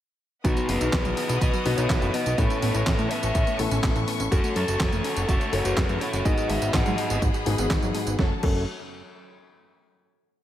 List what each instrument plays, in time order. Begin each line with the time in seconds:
0.44 analog synth bass B1, grand piano B2 B3 D#4 F#4 B4, synth arpeggio sound D#3, lead electric guitar D#4 F#4, string section B4 D#5 F#5 D#6, kick, closed hi-hat, tambourine
0.57 synth arpeggio sound F#3, closed hi-hat, tambourine
0.69 analog synth bass F#1, synth arpeggio sound B3, lead electric guitar G#4 B4, open hi-hat
0.81 analog synth bass B1, synth arpeggio sound D#4, closed hi-hat, tambourine
0.93 analog synth bass B1, synth arpeggio sound D#3, kick, snare, clap, closed hi-hat, tambourine
1.05 analog synth bass B1, synth arpeggio sound F#3, closed hi-hat, tambourine
1.17 synth arpeggio sound B3, open hi-hat
1.29 analog synth bass B1, synth arpeggio sound D#4, closed hi-hat, tambourine
1.41 analog synth bass B1, synth arpeggio sound D#3, lead electric guitar F#4 B4, kick, closed hi-hat, tambourine
1.54 synth arpeggio sound F#3, closed hi-hat, tambourine
1.65 analog synth bass B1, grand piano B2 B3 D#4 F#4 B4, synth arpeggio sound B3, open hi-hat
1.77 analog synth bass B1, synth arpeggio sound D#4, lead electric guitar A4 C#5, closed hi-hat, tambourine
1.90 analog synth bass B1, synth arpeggio sound D#3, kick, snare, clap, closed hi-hat, tambourine
2.02 analog synth bass F#1, synth arpeggio sound F#3, closed hi-hat, tambourine
2.14 synth arpeggio sound B3, lead electric guitar B4 D#5, open hi-hat
2.26 analog synth bass B1, synth arpeggio sound D#4, closed hi-hat, tambourine
2.38 analog synth bass A1, grand piano A2 B3 C#4 E4 A4, synth arpeggio sound E3, lead electric guitar A4 C#5, string section E5 A5 C#6, kick, closed hi-hat, tambourine
2.50 synth arpeggio sound A3, closed hi-hat, tambourine
2.62 analog synth bass A1, synth arpeggio sound B3, open hi-hat
2.74 analog synth bass A1, synth arpeggio sound C#4, closed hi-hat, tambourine
2.86 analog synth bass A1, synth arpeggio sound E3, kick, snare, clap, closed hi-hat, tambourine
2.99 analog synth bass A2, synth arpeggio sound A3, closed hi-hat, tambourine
3.11 synth arpeggio sound B3, lead electric guitar C#5 E5, open hi-hat
3.23 analog synth bass A1, synth arpeggio sound C#4, closed hi-hat, tambourine
3.35 analog synth bass A1, synth arpeggio sound E3, kick, closed hi-hat, tambourine
3.47 synth arpeggio sound A3, closed hi-hat, tambourine
3.59 analog synth bass A1, grand piano A2 B3 C#4 E4 A4, synth arpeggio sound B3, open hi-hat
3.71 analog synth bass A1, synth arpeggio sound C#4, snare, closed hi-hat, tambourine
3.83 analog synth bass A1, synth arpeggio sound E3, kick, snare, clap, closed hi-hat, tambourine
3.95 analog synth bass A1, synth arpeggio sound A3, closed hi-hat, tambourine
4.08 synth arpeggio sound B3, open hi-hat
4.20 analog synth bass A1, synth arpeggio sound C#4, closed hi-hat, tambourine
4.32 analog synth bass F#1, synth arpeggio sound F#3, grand piano A3 C#4 F#4 A4, string section A3 C#5 F#5, lead electric guitar C#4 F#4, kick, closed hi-hat, tambourine
4.44 synth arpeggio sound A3, closed hi-hat, tambourine
4.56 analog synth bass F#2, synth arpeggio sound C#4, lead electric guitar F#4 A4, open hi-hat
4.68 analog synth bass F#1, synth arpeggio sound F#4, closed hi-hat, tambourine
4.80 analog synth bass F#1, synth arpeggio sound F#3, kick, snare, clap, closed hi-hat, tambourine
4.92 analog synth bass F#1, synth arpeggio sound A3, closed hi-hat, tambourine
5.04 synth arpeggio sound C#4, open hi-hat
5.16 analog synth bass F#1, synth arpeggio sound F#4, closed hi-hat, tambourine
5.29 analog synth bass F#1, synth arpeggio sound F#3, lead electric guitar F#4 A4, kick, closed hi-hat, tambourine
5.41 synth arpeggio sound A3, closed hi-hat, tambourine
5.53 analog synth bass F#1, grand piano A3 C#4 F#4 C#5, synth arpeggio sound C#4, open hi-hat
5.65 analog synth bass F#1, synth arpeggio sound F#4, lead electric guitar G#4 B4, closed hi-hat, tambourine
5.77 analog synth bass F#1, synth arpeggio sound F#3, kick, snare, clap, closed hi-hat, tambourine
5.89 analog synth bass F#2, synth arpeggio sound A3, closed hi-hat, tambourine
6.01 synth arpeggio sound C#4, lead electric guitar A4 C#5, open hi-hat
6.13 analog synth bass F#1, synth arpeggio sound F#4, closed hi-hat, tambourine
6.25 analog synth bass G#1, grand piano G#2 B3 D#4 F#4 G#4, synth arpeggio sound D#3, string section G#4 D#5 B5, lead electric guitar B4 D#5, kick, closed hi-hat, tambourine
6.38 synth arpeggio sound F#3, closed hi-hat, tambourine
6.50 analog synth bass G#1, synth arpeggio sound G#3, lead electric guitar C#5 E5, open hi-hat
6.62 analog synth bass G#1, synth arpeggio sound B3, closed hi-hat, tambourine
6.74 analog synth bass G#1, synth arpeggio sound D#3, lead electric guitar D#5 F#5, kick, snare, clap, closed hi-hat, tambourine
6.86 analog synth bass G#2, synth arpeggio sound F#3, closed hi-hat, tambourine
6.98 synth arpeggio sound G#3, open hi-hat
7.10 analog synth bass G#1, synth arpeggio sound B3, closed hi-hat, tambourine
7.22 analog synth bass G#1, synth arpeggio sound D#3, kick, closed hi-hat, tambourine
7.34 synth arpeggio sound F#3, closed hi-hat, tambourine
7.46 analog synth bass G#1, grand piano G#2 B3 D#4 F#4 G#4, synth arpeggio sound G#3, open hi-hat
7.58 analog synth bass G#1, synth arpeggio sound B3, snare, closed hi-hat, tambourine
7.70 analog synth bass G#1, synth arpeggio sound D#3, kick, snare, clap, closed hi-hat, tambourine
7.82 analog synth bass G#1, synth arpeggio sound F#3, closed hi-hat, tambourine
7.95 synth arpeggio sound G#3, open hi-hat
8.07 analog synth bass G#1, synth arpeggio sound B3, closed hi-hat, tambourine
8.19 analog synth bass F#1, string section F#3 F#4 C#5 A5, synth arpeggio sound F#3, grand piano A3 C#4 F#4 A4, kick, snare
8.43 analog synth bass F#1, synth arpeggio sound F#3, grand piano A3 C#4 F#4 A4, kick, crash